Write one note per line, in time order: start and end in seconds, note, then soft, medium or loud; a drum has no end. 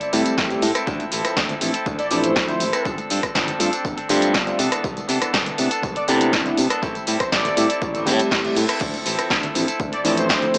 0.00 0.12 C4 medium
0.00 0.13 E4 medium
0.00 0.13 A4 medium
0.00 muted fingered electric bass stroke soft
0.00 closed hi-hat soft
0.00 tambourine soft
0.00 maracas soft
0.12 0.21 A2 medium
0.12 0.36 G3 medium
0.12 0.35 G3 loud
0.12 0.35 A3 medium
0.12 0.37 C4 medium
0.12 0.35 C4 medium
0.12 0.35 E4 medium
0.12 0.37 E4 medium
0.12 0.35 G4 loud
0.12 0.37 A4 medium
0.12 open hi-hat loud
0.12 tambourine medium
0.12 low conga medium
0.12 maracas medium
0.26 muted fingered electric bass stroke soft
0.26 closed hi-hat medium
0.26 tambourine soft
0.26 high conga medium
0.26 maracas soft
0.37 0.54 A1 medium
0.37 0.50 G3 medium
0.37 0.48 G3 medium
0.37 0.49 A3 medium
0.37 0.51 C4 loud
0.37 0.49 C4 medium
0.37 0.49 E4 medium
0.37 0.50 E4 medium
0.37 0.49 G4 medium
0.37 kick loud
0.37 snare loud
0.37 tambourine soft
0.50 0.64 G3 medium
0.50 0.65 A3 medium
0.50 0.65 C4 medium
0.50 0.76 C4 medium
0.50 0.65 E4 medium
0.50 0.75 E4 medium
0.50 0.65 G4 medium
0.50 0.74 A4 medium
0.50 closed hi-hat soft
0.50 tambourine soft
0.50 maracas soft
0.62 0.71 A2 loud
0.62 open hi-hat loud
0.62 tambourine medium
0.62 high conga medium
0.62 maracas medium
0.75 0.86 C4 medium
0.75 0.86 E4 medium
0.75 0.87 A4 medium
0.75 cross-stick medium
0.75 closed hi-hat medium
0.75 tambourine soft
0.75 maracas soft
0.86 1.03 D2 loud
0.86 1.10 F3 medium
0.86 1.11 C4 loud
0.86 1.12 E4 loud
0.86 1.13 A4 loud
0.86 kick loud
0.86 tambourine soft
0.86 maracas medium
0.99 closed hi-hat soft
0.99 tambourine soft
0.99 high conga medium
0.99 maracas soft
1.11 1.20 A1 medium
1.11 1.35 F3 medium
1.11 1.36 C4 medium
1.11 1.36 E4 medium
1.11 1.37 A4 medium
1.11 open hi-hat loud
1.11 tambourine medium
1.11 maracas medium
1.25 cross-stick medium
1.25 closed hi-hat medium
1.25 tambourine soft
1.25 maracas soft
1.36 1.53 D2 loud
1.36 1.60 F3 medium
1.36 1.61 C4 medium
1.36 1.61 E4 loud
1.36 1.62 A4 loud
1.36 kick loud
1.36 snare loud
1.36 tambourine soft
1.36 maracas medium
1.49 closed hi-hat medium
1.49 tambourine soft
1.49 high conga medium
1.49 low conga medium
1.49 maracas soft
1.61 1.70 A1 medium
1.61 1.74 F3 medium
1.61 1.71 F3 medium
1.61 1.71 A3 medium
1.61 1.71 C4 medium
1.61 1.75 C4 medium
1.61 1.71 D4 medium
1.61 1.71 E4 medium
1.61 1.74 E4 medium
1.61 1.72 A4 medium
1.61 open hi-hat loud
1.61 tambourine medium
1.61 maracas medium
1.74 2.00 C4 medium
1.74 1.98 E4 medium
1.74 1.97 A4 medium
1.74 closed hi-hat medium
1.74 tambourine soft
1.74 maracas soft
1.86 1.99 D2 loud
1.86 kick loud
1.86 tambourine soft
1.86 high conga loud
1.86 maracas soft
1.99 2.10 C4 soft
1.99 2.11 E4 medium
1.99 2.11 A4 medium
1.99 2.07 D5 medium
1.99 muted fingered electric bass stroke soft
1.99 closed hi-hat soft
1.99 tambourine soft
1.99 maracas soft
2.10 2.36 A1 loud
2.10 2.34 F3 medium
2.10 2.33 F3 loud
2.10 2.33 A3 medium
2.10 2.33 C4 medium
2.10 2.35 C4 medium
2.10 2.33 D4 medium
2.10 2.33 E4 loud
2.10 2.35 E4 medium
2.10 2.36 A4 medium
2.10 2.19 D5 medium
2.10 open hi-hat loud
2.10 tambourine medium
2.10 maracas medium
2.23 2.90 C5 loud
2.23 closed hi-hat medium
2.23 tambourine soft
2.23 high conga medium
2.23 maracas soft
2.35 2.52 D2 medium
2.35 2.48 F3 medium
2.35 2.49 C4 medium
2.35 2.48 E4 loud
2.35 2.47 A4 loud
2.35 kick loud
2.35 snare loud
2.35 tambourine soft
2.35 maracas medium
2.48 2.63 F3 medium
2.48 2.63 A3 medium
2.48 2.63 C4 medium
2.48 2.74 C4 medium
2.48 2.63 D4 medium
2.48 2.63 E4 medium
2.48 2.73 E4 medium
2.48 2.71 A4 medium
2.48 closed hi-hat soft
2.48 tambourine soft
2.48 low conga medium
2.48 maracas soft
2.60 2.69 A1 medium
2.60 open hi-hat loud
2.60 tambourine medium
2.60 high conga medium
2.60 maracas medium
2.73 2.84 C4 medium
2.73 2.86 E4 medium
2.73 2.85 A4 medium
2.73 cross-stick medium
2.73 closed hi-hat medium
2.73 tambourine soft
2.73 maracas soft
2.85 2.98 G1 loud
2.85 3.08 F3 medium
2.85 3.09 C4 medium
2.85 3.10 D4 medium
2.85 3.11 A4 loud
2.85 kick loud
2.85 tambourine soft
2.85 maracas medium
2.98 muted fingered electric bass stroke soft
2.98 closed hi-hat soft
2.98 tambourine soft
2.98 high conga medium
2.98 maracas soft
3.10 3.19 G2 medium
3.10 3.33 F3 medium
3.10 3.34 C4 medium
3.10 3.34 D4 medium
3.10 3.35 A4 medium
3.10 open hi-hat loud
3.10 tambourine medium
3.10 maracas medium
3.23 kick medium
3.23 cross-stick medium
3.23 closed hi-hat medium
3.23 tambourine soft
3.34 3.51 G1 loud
3.34 3.58 F3 medium
3.34 3.59 C4 loud
3.34 3.59 D4 loud
3.34 3.60 A4 loud
3.34 kick loud
3.34 snare loud
3.34 tambourine soft
3.34 maracas soft
3.48 closed hi-hat medium
3.48 tambourine soft
3.48 high conga medium
3.48 low conga medium
3.48 maracas soft
3.59 3.68 G2 medium
3.59 3.72 F3 medium
3.59 3.69 G3 medium
3.59 3.69 A3 medium
3.59 3.69 C4 medium
3.59 3.73 C4 medium
3.59 3.69 D4 medium
3.59 3.72 D4 medium
3.59 3.69 F4 medium
3.59 3.71 A4 medium
3.59 open hi-hat loud
3.59 tambourine medium
3.59 maracas medium
3.72 3.98 C4 medium
3.72 3.97 D4 medium
3.72 3.95 A4 medium
3.72 closed hi-hat medium
3.72 tambourine soft
3.72 maracas soft
3.85 3.97 G1 loud
3.85 kick loud
3.85 tambourine soft
3.85 high conga loud
3.85 maracas medium
3.97 4.08 C4 medium
3.97 4.09 D4 medium
3.97 4.09 A4 medium
3.97 muted fingered electric bass stroke soft
3.97 closed hi-hat medium
3.97 tambourine soft
3.97 maracas soft
4.09 4.36 G2 loud
4.09 4.32 F3 medium
4.09 4.31 G3 loud
4.09 4.31 A3 loud
4.09 4.33 C4 medium
4.09 4.32 C4 medium
4.09 4.32 D4 medium
4.09 4.33 D4 medium
4.09 4.32 F4 loud
4.09 4.33 A4 medium
4.09 open hi-hat loud
4.09 tambourine medium
4.09 low conga medium
4.09 maracas medium
4.22 closed hi-hat medium
4.22 tambourine soft
4.22 high conga medium
4.22 maracas soft
4.33 4.50 G1 loud
4.33 4.47 F3 loud
4.33 4.45 G3 medium
4.33 4.45 A3 medium
4.33 4.47 C4 medium
4.33 4.45 C4 medium
4.33 4.46 D4 medium
4.33 4.45 A4 loud
4.33 kick loud
4.33 snare loud
4.33 tambourine soft
4.33 maracas medium
4.46 4.58 G3 medium
4.46 4.58 A3 medium
4.46 4.58 C4 medium
4.46 4.58 D4 medium
4.46 4.58 F4 medium
4.46 4.59 A4 medium
4.46 closed hi-hat soft
4.46 tambourine soft
4.46 maracas soft
4.58 4.67 C3 medium
4.58 5.07 E3 medium
4.58 5.07 B3 medium
4.58 5.08 D4 medium
4.58 5.10 A4 medium
4.58 open hi-hat loud
4.58 tambourine medium
4.58 high conga medium
4.58 maracas medium
4.72 cross-stick medium
4.72 closed hi-hat medium
4.72 tambourine soft
4.72 maracas soft
4.84 5.00 C2 loud
4.84 kick loud
4.84 tambourine soft
4.84 maracas medium
4.97 closed hi-hat soft
4.97 tambourine soft
4.97 high conga medium
4.97 maracas soft
5.08 5.17 C3 medium
5.08 5.32 E3 medium
5.08 5.32 B3 medium
5.08 5.33 D4 medium
5.08 5.33 A4 medium
5.08 open hi-hat loud
5.08 tambourine medium
5.08 maracas medium
5.22 cross-stick medium
5.22 closed hi-hat medium
5.22 tambourine soft
5.22 maracas soft
5.33 5.49 C2 loud
5.33 5.56 E3 loud
5.33 5.57 B3 medium
5.33 5.58 D4 loud
5.33 5.59 A4 loud
5.33 kick loud
5.33 snare loud
5.33 tambourine soft
5.33 maracas medium
5.46 closed hi-hat medium
5.46 tambourine soft
5.46 high conga medium
5.46 low conga medium
5.46 maracas soft
5.58 5.67 C3 medium
5.58 5.71 E3 medium
5.58 5.67 A3 medium
5.58 5.67 B3 medium
5.58 5.71 B3 medium
5.58 5.68 C4 medium
5.58 5.68 D4 medium
5.58 5.71 D4 medium
5.58 5.68 E4 medium
5.58 5.69 A4 medium
5.58 open hi-hat loud
5.58 tambourine medium
5.58 maracas medium
5.71 5.96 B3 medium
5.71 5.95 D4 medium
5.71 5.94 A4 medium
5.71 closed hi-hat medium
5.71 tambourine soft
5.71 maracas soft
5.82 5.96 C2 loud
5.82 kick loud
5.82 tambourine soft
5.82 high conga medium
5.82 maracas medium
5.95 6.07 B3 medium
5.95 6.08 D4 medium
5.95 6.08 A4 medium
5.95 6.04 D5 medium
5.95 muted fingered electric bass stroke soft
5.95 closed hi-hat medium
5.95 tambourine soft
5.95 maracas soft
6.07 6.35 C3 loud
6.07 6.31 E3 medium
6.07 6.30 A3 loud
6.07 6.30 B3 medium
6.07 6.32 B3 medium
6.07 6.30 C4 medium
6.07 6.30 D4 medium
6.07 6.32 D4 medium
6.07 6.30 E4 loud
6.07 6.33 A4 medium
6.07 6.16 D5 medium
6.07 open hi-hat loud
6.07 tambourine medium
6.07 maracas loud
6.20 closed hi-hat medium
6.20 tambourine soft
6.20 high conga medium
6.20 maracas soft
6.32 6.49 C2 loud
6.32 6.45 E3 loud
6.32 6.43 A3 medium
6.32 6.43 B3 medium
6.32 6.46 B3 medium
6.32 6.44 C4 medium
6.32 6.44 D4 medium
6.32 6.45 D4 loud
6.32 6.44 A4 medium
6.32 kick loud
6.32 snare loud
6.32 tambourine soft
6.32 maracas medium
6.45 6.60 A3 medium
6.45 6.60 B3 medium
6.45 6.71 B3 medium
6.45 6.60 C4 medium
6.45 6.70 D4 medium
6.45 6.60 D4 medium
6.45 6.60 E4 medium
6.45 6.69 A4 medium
6.45 closed hi-hat soft
6.45 tambourine soft
6.45 low conga medium
6.45 maracas soft
6.57 6.66 C3 medium
6.57 open hi-hat loud
6.57 tambourine medium
6.57 high conga medium
6.57 maracas medium
6.70 6.82 B3 medium
6.70 6.83 D4 medium
6.70 6.82 A4 medium
6.70 cross-stick medium
6.70 closed hi-hat medium
6.70 tambourine soft
6.70 maracas soft
6.82 6.95 A1 loud
6.82 7.05 G3 medium
6.82 7.06 C4 loud
6.82 7.07 E4 loud
6.82 7.08 A4 loud
6.82 kick loud
6.82 tambourine soft
6.82 maracas soft
6.95 muted fingered electric bass stroke soft
6.95 closed hi-hat soft
6.95 tambourine soft
6.95 high conga medium
6.95 maracas soft
7.07 7.15 A2 medium
7.07 7.31 G3 medium
7.07 7.31 C4 medium
7.07 7.32 E4 medium
7.07 7.32 A4 medium
7.07 open hi-hat loud
7.07 tambourine medium
7.07 maracas loud
7.20 7.29 C5 medium
7.20 muted fingered electric bass stroke soft
7.20 kick medium
7.20 cross-stick medium
7.20 closed hi-hat medium
7.20 tambourine soft
7.20 maracas soft
7.32 7.48 A1 loud
7.32 7.55 G3 medium
7.32 7.56 C4 loud
7.32 7.57 E4 loud
7.32 7.57 A4 loud
7.32 8.02 D5 medium
7.32 kick loud
7.32 snare loud
7.32 tambourine soft
7.32 maracas medium
7.45 closed hi-hat medium
7.45 tambourine soft
7.45 high conga medium
7.45 low conga loud
7.45 maracas soft
7.56 7.65 A2 medium
7.56 7.69 G3 medium
7.56 7.66 G3 medium
7.56 7.66 A3 medium
7.56 7.66 C4 medium
7.56 7.70 C4 medium
7.56 7.66 E4 medium
7.56 7.69 E4 medium
7.56 7.66 G4 medium
7.56 7.68 A4 medium
7.56 open hi-hat loud
7.56 tambourine medium
7.56 maracas loud
7.69 7.95 C4 medium
7.69 7.94 E4 medium
7.69 7.93 A4 medium
7.69 closed hi-hat medium
7.69 tambourine soft
7.69 maracas soft
7.82 8.09 A1 loud
7.82 kick loud
7.82 tambourine soft
7.82 reverse cymbal medium
7.82 high conga loud
7.82 maracas medium
7.94 8.06 C4 medium
7.94 8.06 E4 medium
7.94 8.06 A4 medium
7.94 closed hi-hat medium
7.94 tambourine soft
7.94 low conga medium
7.94 maracas soft
8.05 8.19 A2 loud
8.05 8.28 G3 loud
8.05 8.30 G3 medium
8.05 8.28 A3 medium
8.05 8.28 C4 medium
8.05 8.30 C4 medium
8.05 8.28 E4 medium
8.05 8.31 E4 medium
8.05 8.28 G4 loud
8.05 8.31 A4 medium
8.05 open hi-hat loud
8.05 tambourine medium
8.05 low conga loud
8.05 maracas medium
8.19 muted fingered electric bass stroke soft
8.19 closed hi-hat medium
8.19 tambourine soft
8.19 high conga medium
8.19 maracas soft
8.31 8.47 A1 medium
8.31 8.44 G3 loud
8.31 8.44 C4 medium
8.31 8.44 E4 medium
8.31 8.42 G4 medium
8.31 8.42 A4 loud
8.31 kick loud
8.31 snare loud
8.31 tambourine soft
8.31 maracas medium
8.44 8.58 G3 medium
8.44 8.58 A3 medium
8.44 8.58 C4 medium
8.44 8.70 C4 soft
8.44 8.58 E4 medium
8.44 8.68 E4 medium
8.44 8.58 G4 medium
8.44 8.67 A4 medium
8.44 closed hi-hat soft
8.44 tambourine soft
8.44 maracas soft
8.56 8.64 A2 medium
8.56 open hi-hat loud
8.56 tambourine medium
8.56 high conga medium
8.56 maracas medium
8.68 8.80 C4 soft
8.68 8.80 E4 medium
8.68 8.81 A4 medium
8.68 cross-stick medium
8.68 closed hi-hat medium
8.68 tambourine soft
8.68 maracas soft
8.81 8.97 D2 loud
8.81 9.06 A4 loud
8.81 kick loud
8.81 crash medium
8.81 tambourine soft
8.94 closed hi-hat soft
8.94 tambourine soft
8.94 high conga medium
8.94 maracas soft
9.05 9.14 A1 medium
9.05 9.29 F3 medium
9.05 9.29 C4 medium
9.05 9.30 E4 medium
9.05 9.30 A4 medium
9.05 open hi-hat loud
9.05 tambourine medium
9.05 maracas loud
9.19 muted fingered electric bass stroke soft
9.19 cross-stick medium
9.19 closed hi-hat medium
9.19 tambourine soft
9.19 maracas soft
9.30 9.46 D2 loud
9.30 9.53 F3 medium
9.30 9.54 C4 loud
9.30 9.55 E4 loud
9.30 9.55 A4 loud
9.30 kick loud
9.30 snare loud
9.30 tambourine soft
9.30 maracas medium
9.43 closed hi-hat medium
9.43 tambourine soft
9.43 high conga medium
9.43 low conga loud
9.43 maracas soft
9.54 9.63 A1 medium
9.54 9.68 F3 medium
9.54 9.64 F3 medium
9.54 9.64 A3 medium
9.54 9.64 C4 medium
9.54 9.68 C4 medium
9.54 9.65 D4 medium
9.54 9.65 E4 medium
9.54 9.68 E4 medium
9.54 9.66 A4 medium
9.54 open hi-hat loud
9.54 tambourine medium
9.54 maracas medium
9.67 9.93 C4 medium
9.67 9.92 E4 medium
9.67 9.91 A4 medium
9.67 closed hi-hat medium
9.67 tambourine soft
9.67 maracas soft
9.79 9.93 D2 loud
9.79 kick loud
9.79 tambourine soft
9.79 high conga loud
9.79 maracas medium
9.92 10.04 C4 medium
9.92 10.04 E4 medium
9.92 10.04 A4 medium
9.92 10.00 D5 medium
9.92 muted fingered electric bass stroke soft
9.92 closed hi-hat medium
9.92 tambourine soft
9.92 maracas soft
10.04 10.30 A1 loud
10.04 10.28 F3 medium
10.04 10.26 F3 loud
10.04 10.27 A3 medium
10.04 10.27 C4 medium
10.04 10.28 C4 medium
10.04 10.27 D4 medium
10.04 10.27 E4 loud
10.04 10.29 E4 medium
10.04 10.29 A4 medium
10.04 10.13 D5 medium
10.04 open hi-hat loud
10.04 tambourine medium
10.04 maracas medium
10.18 10.58 C5 loud
10.18 closed hi-hat medium
10.18 tambourine soft
10.18 high conga medium
10.18 maracas soft
10.29 10.45 D2 medium
10.29 10.42 F3 medium
10.29 10.42 C4 medium
10.29 10.42 E4 loud
10.29 10.40 A4 medium
10.29 kick loud
10.29 snare loud
10.29 tambourine soft
10.29 maracas medium
10.42 10.56 F3 medium
10.42 10.56 A3 medium
10.42 10.57 C4 medium
10.42 10.58 C4 medium
10.42 10.57 D4 medium
10.42 10.58 E4 medium
10.42 10.57 E4 medium
10.42 10.58 A4 medium
10.42 closed hi-hat soft
10.42 tambourine soft
10.42 low conga medium
10.42 maracas soft
10.54 10.58 A1 medium
10.54 open hi-hat loud
10.54 tambourine medium
10.54 high conga medium
10.54 maracas medium